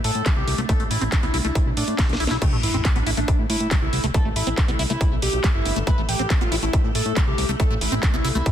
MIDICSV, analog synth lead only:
0, 0, Header, 1, 2, 480
1, 0, Start_track
1, 0, Key_signature, 0, "minor"
1, 0, Tempo, 431655
1, 768, Time_signature, 4, 2, 24, 8
1, 9473, End_track
2, 0, Start_track
2, 0, Title_t, "Analog synth lead"
2, 0, Program_c, 0, 81
2, 48, Note_on_c, 0, 69, 100
2, 254, Note_off_c, 0, 69, 0
2, 408, Note_on_c, 0, 67, 94
2, 614, Note_off_c, 0, 67, 0
2, 769, Note_on_c, 0, 69, 103
2, 906, Note_off_c, 0, 69, 0
2, 1008, Note_on_c, 0, 64, 95
2, 1214, Note_off_c, 0, 64, 0
2, 1368, Note_on_c, 0, 64, 90
2, 1505, Note_off_c, 0, 64, 0
2, 1607, Note_on_c, 0, 64, 96
2, 1814, Note_off_c, 0, 64, 0
2, 1967, Note_on_c, 0, 62, 102
2, 2174, Note_off_c, 0, 62, 0
2, 2328, Note_on_c, 0, 62, 95
2, 2534, Note_off_c, 0, 62, 0
2, 2688, Note_on_c, 0, 67, 100
2, 2826, Note_off_c, 0, 67, 0
2, 2928, Note_on_c, 0, 64, 94
2, 3134, Note_off_c, 0, 64, 0
2, 3288, Note_on_c, 0, 62, 89
2, 3425, Note_off_c, 0, 62, 0
2, 3528, Note_on_c, 0, 62, 96
2, 3734, Note_off_c, 0, 62, 0
2, 3888, Note_on_c, 0, 64, 101
2, 4094, Note_off_c, 0, 64, 0
2, 4249, Note_on_c, 0, 64, 96
2, 4454, Note_off_c, 0, 64, 0
2, 4609, Note_on_c, 0, 69, 101
2, 4746, Note_off_c, 0, 69, 0
2, 4849, Note_on_c, 0, 64, 95
2, 5055, Note_off_c, 0, 64, 0
2, 5209, Note_on_c, 0, 64, 89
2, 5346, Note_off_c, 0, 64, 0
2, 5449, Note_on_c, 0, 64, 96
2, 5655, Note_off_c, 0, 64, 0
2, 5808, Note_on_c, 0, 67, 103
2, 6014, Note_off_c, 0, 67, 0
2, 6169, Note_on_c, 0, 64, 97
2, 6375, Note_off_c, 0, 64, 0
2, 6529, Note_on_c, 0, 71, 103
2, 6666, Note_off_c, 0, 71, 0
2, 6769, Note_on_c, 0, 67, 96
2, 6974, Note_off_c, 0, 67, 0
2, 7129, Note_on_c, 0, 65, 89
2, 7266, Note_off_c, 0, 65, 0
2, 7369, Note_on_c, 0, 64, 95
2, 7574, Note_off_c, 0, 64, 0
2, 7729, Note_on_c, 0, 69, 98
2, 7935, Note_off_c, 0, 69, 0
2, 8089, Note_on_c, 0, 67, 100
2, 8294, Note_off_c, 0, 67, 0
2, 8449, Note_on_c, 0, 69, 103
2, 8586, Note_off_c, 0, 69, 0
2, 8689, Note_on_c, 0, 64, 97
2, 8894, Note_off_c, 0, 64, 0
2, 9049, Note_on_c, 0, 64, 88
2, 9186, Note_off_c, 0, 64, 0
2, 9289, Note_on_c, 0, 64, 94
2, 9473, Note_off_c, 0, 64, 0
2, 9473, End_track
0, 0, End_of_file